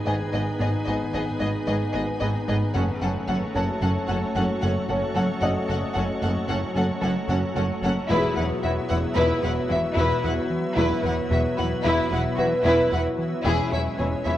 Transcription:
Already playing: D#3 B3 D#4 G#4 B4 B5
0.06 G#1 G#2 B3 G#4 D#5 G#5
0.33 G#1 G#2 B3 G#4 D#5
0.60 G#1 G#2 B3 G#4 D#5
0.86 G#1 G#2 B3 G#4 D#5
1.13 G#1 G#2 B3 G#4 D#5
1.40 G#1 G#2 B3 G#4 D#5
1.67 G#1 G#2 G#3 B3 G#4 D#5
1.93 G#1 G#2 B3 G#4 D#5
2.20 G#1 G#2 B3 G#4 D#5
2.48 G#1 G#2 G#3 B3 G#4 D#5
2.73 F#1 F#2 F#3 A3 C#4 F#4 A4 C#5 F#5
3.01 F#1 F#2 C#4 A4 F#5
3.28 F#1 F#2 C#4 A4 F#5
3.55 F#1 F#2 C#4 A4 F#5 A5
3.81 F#1 F#2 C#4 A4 F#5
4.08 F#1 F#2 C#4 A4 F#5
4.35 F#1 F#2 F#3 C#4 A4 F#5
4.61 F#1 F#2 C#4 A4 F#5
4.89 F#1 F#2 C#4 A4 F#5
5.15 F#1 F#2 F#3 C#4 A4 F#5
5.41 F#1 F#2 C#4 A4 D#5 F#5
5.68 F#1 F#2 C#4 A4 F#5
5.94 F#1 F#2 C#4 A4 F#5
6.22 F#1 F#2 C#4 A4 F#5
6.48 F#1 F#2 C#4 A4 F#5
6.75 F#1 F#2 C#4 A4 F#5
7.02 F#1 F#2 F#3 C#4 A4 F#5
7.28 F#1 F#2 C#4 A4 F#5
7.55 F#1 F#2 C#4 A4 F#5
7.83 F#1 F#2 F#3 C#4 A4 F#5
8.08 E1 E2 F#3 G#3 B3 E4 G#4 B4 E5
8.36 E1 E2 E4 B4 F#5
8.63 E1 E2 E4 F#4 E5
8.89 E1 E2 E4 B4 F#5
9.16 E1 E2 E4 B4
9.42 E1 E2 E4 B4 F#5
9.69 E1 E2 E3 E4 F#4 E5
9.96 E1 E2 E4 B4
10.23 E1 E2 E4 B4 F#5
10.50 E3
10.76 E1 E2 E4 B4
11.03 E1 E2 E4 B4 F#5
11.30 E1 E2 E4 F#4 E5
11.57 E1 E2 E4 B4 F#5
11.84 E1 E2 E4 B4
12.11 E1 E2 E4 B4 F#5
12.37 E1 E2 E3 E4 F#4 B4 E5
12.64 E1 E2 E4 B4
12.91 E1 E2 E4 B4 F#5
13.19 E3
13.45 E1 E2 G#3 C#4 E4 G#4 E5
13.72 E1 E2 E4 C#5 E5
13.98 E1 E2 E4 G#4 C#5
14.26 E1 E2 E4 C#5 E5

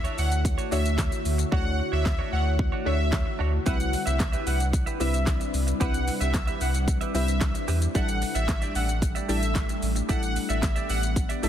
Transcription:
Already playing: D3 A3 E4 F#4 C#5
0.04 D4 F#4 C#5, closed hi-hat, shaker
0.18 D2 D4 F#4 C#5 F#5, open hi-hat, shaker
0.31 muted clean electric guitar stroke, closed hi-hat, shaker
0.45 muted clean electric guitar stroke, kick, closed hi-hat, shaker
0.58 D4 F#4 C#5, closed hi-hat, shaker
0.71 D2 A3 D4 F#4 C#5 E5, open hi-hat, shaker
0.85 muted clean electric guitar stroke, closed hi-hat, shaker
0.98 kick, snare, clap, closed hi-hat, shaker
1.12 muted clean electric guitar stroke, closed hi-hat, shaker
1.25 D2, open hi-hat, shaker
1.38 muted clean electric guitar stroke, closed hi-hat, shaker
1.52 D2 A3 D4 F#4 C#5 F#5, kick
1.65 muted clean electric guitar stroke
1.79 muted clean electric guitar stroke
1.92 D2 D4 F#4 C#5 E5
2.05 kick, snare, clap
2.19 D4 F#4 C#5
2.32 D2 D4 F#4 C#5 F#5
2.46 muted clean electric guitar stroke
2.59 muted clean electric guitar stroke, kick
2.72 D4 F#4 C#5
2.85 D2 A3 D4 F#4 C#5 E5
2.99 muted clean electric guitar stroke
3.12 muted clean electric guitar stroke, kick, snare, clap
3.26 muted clean electric guitar stroke
3.39 D2 D4 F#4 C#5
3.53 muted clean electric guitar stroke
3.66 C2 C3 G3 C4 D4 E4 G4 B4 E5 F#5, kick, closed hi-hat, shaker
3.79 muted clean electric guitar stroke, closed hi-hat, shaker
3.92 muted clean electric guitar stroke, open hi-hat, shaker
4.06 C2 G4 B4 E5, closed hi-hat, shaker
4.20 kick, snare, clap, closed hi-hat, shaker
4.32 G4 B4 E5, closed hi-hat, shaker
4.46 C2 G4 B4 E5 F#5, open hi-hat, shaker
4.59 muted clean electric guitar stroke, closed hi-hat, shaker
4.73 muted clean electric guitar stroke, kick, closed hi-hat, shaker
4.86 G4 B4 E5, closed hi-hat, shaker
5.00 C2 G3 C4 E4 G4 B4 E5, open hi-hat, shaker
5.13 muted clean electric guitar stroke, closed hi-hat, shaker
5.27 muted clean electric guitar stroke, kick, snare, clap, closed hi-hat, shaker
5.40 muted clean electric guitar stroke, closed hi-hat, shaker
5.54 C2, open hi-hat, shaker
5.67 muted clean electric guitar stroke, closed hi-hat, shaker
5.80 C2 G3 C4 E4 G4 B4 E5 F#5, kick, closed hi-hat, shaker
5.94 muted clean electric guitar stroke, closed hi-hat, shaker
6.07 muted clean electric guitar stroke, open hi-hat, shaker
6.20 C2 G4 B4 E5, closed hi-hat, shaker
6.34 kick, snare, clap, closed hi-hat, shaker
6.47 G4 B4 E5, closed hi-hat, shaker
6.61 C2 G4 B4 E5 F#5, open hi-hat, shaker
6.74 muted clean electric guitar stroke, closed hi-hat, shaker
6.88 muted clean electric guitar stroke, kick, closed hi-hat, shaker
7.01 G4 B4 E5, closed hi-hat, shaker
7.14 C2 G3 C4 E4 G4 B4 E5, open hi-hat, shaker
7.28 muted clean electric guitar stroke, closed hi-hat, shaker
7.41 kick, snare, clap, closed hi-hat, shaker
7.55 muted clean electric guitar stroke, closed hi-hat, shaker
7.68 E2 G4 B4 E5, open hi-hat, shaker
7.81 muted clean electric guitar stroke, closed hi-hat, shaker
7.95 A1 G3 A3 D4 E4 G4 A4 D5 E5 F#5, kick, closed hi-hat, shaker
8.08 muted clean electric guitar stroke, closed hi-hat, shaker
8.22 muted clean electric guitar stroke, open hi-hat, shaker
8.35 A1 G4 D5 E5, closed hi-hat, shaker
8.48 kick, snare, clap, closed hi-hat, shaker
8.62 G4 D5 E5, closed hi-hat, shaker
8.75 A1 G4 D5 E5 F#5, open hi-hat, shaker
8.89 muted clean electric guitar stroke, closed hi-hat, shaker
9.02 muted clean electric guitar stroke, kick, closed hi-hat, shaker
9.15 G4 D5 E5, closed hi-hat, shaker
9.28 A1 G3 D4 E4 G4 A4 D5 E5, open hi-hat, shaker
9.42 muted clean electric guitar stroke, closed hi-hat, shaker
9.55 muted clean electric guitar stroke, kick, snare, clap, closed hi-hat, shaker
9.69 muted clean electric guitar stroke, closed hi-hat, shaker
9.83 A1, open hi-hat, shaker
9.96 muted clean electric guitar stroke, closed hi-hat, shaker
10.09 A1 G3 B3 D4 E4 G4 A4 D5 E5 F#5, kick, closed hi-hat, shaker
10.22 muted clean electric guitar stroke, closed hi-hat, shaker
10.36 muted clean electric guitar stroke, open hi-hat, shaker
10.49 A1 G4 D5 E5, closed hi-hat, shaker
10.63 kick, snare, clap, closed hi-hat, shaker
10.76 G4 D5 E5, closed hi-hat, shaker
10.89 A1 G4 D5 E5 F#5, open hi-hat, shaker
11.03 muted clean electric guitar stroke, closed hi-hat, shaker
11.16 muted clean electric guitar stroke, kick, closed hi-hat, shaker
11.29 G4 D5 E5, closed hi-hat, shaker
11.43 A1 G3 D4 E4 G4 A4 D5 E5, open hi-hat, shaker

